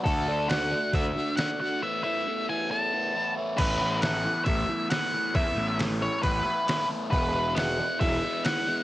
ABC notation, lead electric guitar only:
X:1
M:4/4
L:1/8
Q:1/4=136
K:Dlyd
V:1 name="Lead electric guitar"
A2 f2 e2 f f | e e2 g a3 z | B2 f2 e2 f2 | e2 z c B3 z |
B2 f2 e2 f2 |]